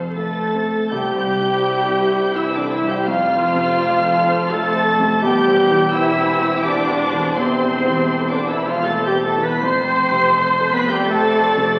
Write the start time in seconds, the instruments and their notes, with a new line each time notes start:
Already playing: double bass section F1, cello section F2, grand piano F2 C4 A4 C5, harp F3 C4 F4 A4, viola section A4, violin section C5 F5
0.15 french horn section A3, grand piano C4 A4, clarinet A4, viola section A4, violin section B4 A6, flute section A5, harp A5
0.41 harp C5
0.55 grand piano C4 C5, violin section A4
0.67 harp A4
0.90 cello section C2, grand piano C2, double bass section C2, harp C3, timpani C3, french horn section G3, violin section E4 C5 G6, clarinet G4, viola section G4, flute section G5
1.15 harp C4, grand piano C5
1.39 grand piano G2, harp E4
1.64 grand piano C5, harp C5
1.88 grand piano C4, harp E5
2.12 grand piano C5, harp C5
2.35 french horn section E3, clarinet E4, grand piano E4, harp E4, viola section E4, flute section E5, violin section E6
2.52 clarinet D4, viola section D4, flute section D5, violin section D6
2.57 french horn section D3, harp C4, grand piano C5
2.71 french horn section E3, clarinet E4, viola section E4, flute section E5, violin section E6
2.83 grand piano G2, harp G3
2.88 french horn section G3, clarinet G4, viola section G4, flute section G5, violin section G6
3.05 grand piano F2, cello section F2, harp F3, clarinet F4, viola section F4, violin section A4 F6, flute section F5
3.09 double bass section F1, french horn section F3
3.31 harp C4, grand piano C5
3.55 grand piano C3, harp A4
3.79 grand piano C5, harp C5
4.04 grand piano C4, harp A5
4.28 grand piano C5, harp C5
4.50 french horn section A3, clarinet A4, grand piano A4, viola section A4, harp A4, flute section A5, violin section A6
4.76 harp C4, grand piano C5
5.00 grand piano C3, harp F4
5.22 double bass section E1, cello section E2, grand piano E2, harp E3, french horn section G3, clarinet G4, violin section G4 C5 G6, viola section G4, flute section G5
5.47 harp C4, grand piano C5
5.71 grand piano E3, harp G4
5.92 french horn section E3, clarinet E4, viola section E4, grand piano C5, harp C5, flute section E5, violin section E6
6.18 grand piano C4, harp G5
6.41 grand piano C5, harp C5
6.62 french horn section D3, clarinet D4, viola section D4, grand piano G4, harp G4, flute section D5, violin section D6
6.89 harp C4, grand piano C5
7.13 grand piano E3, harp E4
7.38 grand piano E2, french horn section C3, harp E3, clarinet C4, viola section C4, violin section A4 C6, flute section C5
7.62 harp C4, grand piano C5
7.88 grand piano E3, harp A4
8.11 grand piano C5, harp C5
8.31 french horn section D3, viola section D4, clarinet D4, flute section D5, violin section D6
8.38 grand piano C4, harp A5
8.49 french horn section E3, viola section E4, clarinet E4, flute section E5, violin section E6
8.62 grand piano C5, harp C5
8.68 french horn section F3, viola section F4, clarinet F4, flute section F5, violin section F6
8.85 french horn section A3, clarinet A4, viola section A4, grand piano A4, harp A4, flute section A5, violin section A6
9.06 french horn section G3, viola section G4, clarinet G4, flute section G5, violin section G6
9.13 harp C4, grand piano C5
9.23 french horn section A3, clarinet A4, viola section A4, flute section A5, violin section A6
9.38 grand piano E3, harp E4
9.43 french horn section B3, clarinet B4, viola section B4, flute section B5, violin section B6
9.61 double bass section F1, grand piano F2, cello section F2, harp F3, french horn section C4, violin section A4 C5 C7, clarinet C5, viola section C5, flute section C6
9.87 harp A3, grand piano C5
10.01 violin section G4
10.12 grand piano C3, harp A4
10.36 violin section A4, grand piano C5, harp C5
10.60 grand piano A3, harp A5
10.70 french horn section B3, viola section B4, clarinet B4, flute section B5, violin section B6
10.85 harp A4, grand piano C5
10.91 french horn section G3, viola section G4, clarinet G4, flute section G5, violin section G6
11.07 french horn section A3, viola section A4, clarinet A4, grand piano A4, harp C5, violin section C5 D5 A6
11.11 flute section A5
11.32 harp A3, grand piano C5
11.57 grand piano C3